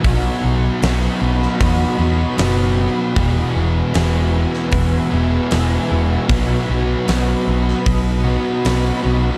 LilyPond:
<<
  \new Staff \with { instrumentName = "Ambient pad" } { \time 4/4 \key e \major \tempo 4 = 77 << { <dis'' b''>1 | <e'' gis''>1 | <dis'' b''>1 | } \\ { <fis' b'>1 | <fis' b'>1~ | <fis' b'>1 | } >> }
  \new Staff \with { instrumentName = "Overdriven electric guitar" } { \time 4/4 \key e \major <b, fis b dis' fis'>4 <fis b dis' fis'>8 <b dis' fis'>8 <fis b dis' fis'>8 <b dis' fis'>8 <fis b dis' fis'>4 | <e, b, e gis b gis'>8 <e gis b gis'>8 <e gis b gis'>4. <e gis b gis'>8 <e gis b gis'>8 <e gis b gis'>8 | <b, fis b dis' fis'>8 <b dis' fis'>8 <fis b dis' fis'>4. <b dis' fis'>8 <fis b dis' fis'>8 <b dis' fis'>8 | }
  \new Staff \with { instrumentName = "Distorted electric guitar" } { \clef bass \time 4/4 \key e \major <b, fis b>4 <b, fis b>8 <fis b>4 <fis b>8 <b, fis b>4 | <e, b, e>4 <e, b, e>4 <e, b, e>8 <b, e>4 <b, e>8 | <b, fis b>4 <b, fis b>4 <b, fis b>8 <fis b>4 <fis b>8 | }
  \new Staff \with { instrumentName = "Picked electric bass" } { \clef bass \time 4/4 \key e \major b,,8 b,,8 b,,8 b,,8 e,8 e,8 fis,,4 | e,,8 e,,8 e,,4 e,,8 e,,8 e,,8 e,,8 | b,,8 b,,8 b,,8 b,,8 b,,4 b,,8 b,,8 | }
  \new DrumStaff \with { instrumentName = "Drums" } \drummode { \time 4/4 <hho bd>4 <hho sn>8. sn16 <hho bd>4 <hho sn>4 | <hho bd>4 <hho sn>8. sn16 <hho bd>4 <hho sn>4 | <hho bd>4 <hho sn>8. sn16 <hho bd>4 <hho sn>4 | }
>>